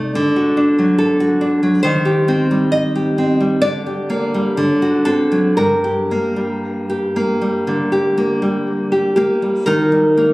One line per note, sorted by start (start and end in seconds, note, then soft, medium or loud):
0.00 0.11 C3 medium
0.00 0.15 A3 soft
0.00 0.15 D#4 soft
0.00 0.15 A4 soft
0.00 0.53 D5 medium
0.15 1.81 D3 medium
0.36 1.19 F#4 soft
0.57 1.40 D4 soft
0.79 1.62 F#3 soft
0.98 1.81 A4 medium
1.20 1.85 F#4 medium
1.41 1.85 D4 soft
1.63 1.84 F#3 soft
1.83 3.59 D#3 medium
1.83 2.69 C5 medium
2.05 2.94 G4 soft
2.28 3.17 C4 soft
2.51 3.39 G3 soft
2.72 3.59 D#5 medium
2.96 3.63 G4 soft
3.18 3.64 C4 soft
3.40 3.64 G3 soft
3.62 4.55 D3 medium
3.62 5.03 D5 medium
3.86 4.58 G4 soft
4.10 4.57 A#3 medium
4.34 4.59 G3 soft
4.57 5.55 D3 medium
4.82 5.59 F#4 medium
5.05 5.58 C4 soft
5.05 5.56 A4 medium
5.32 5.58 F#3 soft
5.57 7.64 G2 medium
5.57 8.64 A#4 medium
5.84 6.88 G4 soft
6.11 7.15 A#3 soft
6.36 7.40 G3 soft
6.90 7.91 G4 soft
7.16 8.16 A#3 soft
7.41 8.41 G3 soft
7.67 9.17 D3 soft
7.92 8.91 G4 soft
8.18 9.16 A#3 soft
8.42 9.41 G3 soft
8.92 9.15 G4 soft
9.16 9.64 A#3 soft
9.16 9.64 G4 soft
9.42 9.67 G3 soft
9.66 10.34 D#3 medium
9.66 10.34 D#4 medium
9.66 10.34 A#4 medium
9.92 10.34 G3 soft
10.17 10.34 A#3 soft